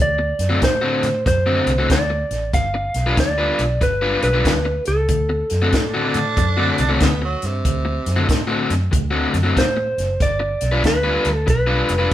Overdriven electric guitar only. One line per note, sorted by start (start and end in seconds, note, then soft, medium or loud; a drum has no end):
0.19 muted overdriven electric guitar stroke soft
0.49 0.60 D3 medium
0.49 0.60 A3 medium
0.49 0.61 C4 medium
0.49 0.62 F#4 medium
0.62 muted overdriven electric guitar stroke soft
0.81 1.07 D3 medium
0.81 1.07 A3 medium
0.81 1.06 C4 medium
0.81 1.06 F#4 medium
1.26 muted overdriven electric guitar stroke soft
1.46 1.71 D3 medium
1.46 1.71 A3 medium
1.46 1.70 C4 medium
1.46 1.70 F#4 medium
1.78 1.96 D3 medium
1.78 1.97 A3 medium
1.78 1.96 C4 medium
1.78 1.96 F#4 medium
2.10 muted overdriven electric guitar stroke soft
2.74 muted overdriven electric guitar stroke soft
3.06 3.17 G3 medium
3.06 3.18 D4 medium
3.06 3.18 F4 medium
3.06 3.17 B4 medium
3.18 muted overdriven electric guitar stroke soft
3.38 3.62 G3 medium
3.38 3.62 D4 medium
3.38 3.62 F4 medium
3.38 3.62 B4 medium
3.81 muted overdriven electric guitar stroke soft
4.01 4.26 G3 medium
4.01 4.26 D4 medium
4.01 4.26 F4 medium
4.01 4.25 B4 medium
4.33 4.52 G3 medium
4.33 4.52 D4 medium
4.33 4.51 F4 medium
4.33 4.51 B4 medium
4.65 muted overdriven electric guitar stroke soft
5.29 muted overdriven electric guitar stroke soft
5.62 5.73 D3 medium
5.62 5.73 A3 medium
5.62 5.73 C4 medium
5.62 5.73 F#4 medium
5.74 muted overdriven electric guitar stroke soft
5.94 6.18 D3 medium
5.94 6.18 A3 medium
5.94 6.18 C4 medium
5.94 6.17 F#4 medium
6.37 muted overdriven electric guitar stroke soft
6.57 6.82 D3 medium
6.57 6.81 A3 medium
6.57 6.81 C4 medium
6.57 6.81 F#4 medium
6.89 7.07 D3 medium
6.89 7.07 A3 medium
6.89 7.07 C4 medium
6.89 7.06 F#4 medium
7.22 muted overdriven electric guitar stroke soft
7.85 muted overdriven electric guitar stroke soft
8.16 8.27 D3 medium
8.16 8.26 A3 medium
8.16 8.27 C4 medium
8.16 8.27 F#4 medium
8.28 muted overdriven electric guitar stroke soft
8.47 8.72 D3 medium
8.47 8.72 A3 medium
8.47 8.72 C4 medium
8.47 8.72 F#4 medium
8.91 muted overdriven electric guitar stroke soft
9.11 9.36 D3 medium
9.11 9.36 A3 medium
9.11 9.36 C4 medium
9.11 9.35 F#4 medium
9.43 9.62 D3 medium
9.43 9.62 A3 medium
9.43 9.62 C4 medium
9.43 9.62 F#4 medium
9.77 muted overdriven electric guitar stroke soft
10.40 muted overdriven electric guitar stroke medium
10.72 10.82 G3 medium
10.72 10.83 D4 medium
10.72 10.83 F4 medium
10.72 10.83 B4 medium
10.83 muted overdriven electric guitar stroke soft
11.04 11.29 G3 medium
11.04 11.28 D4 medium
11.04 11.28 F4 medium
11.04 11.28 B4 medium
11.46 muted overdriven electric guitar stroke soft
11.67 11.92 G3 medium
11.67 11.92 D4 medium
11.67 11.91 F4 medium
11.67 11.91 B4 medium
11.98 12.13 G3 medium
11.98 12.13 D4 medium
11.98 12.13 F4 medium
11.98 12.13 B4 medium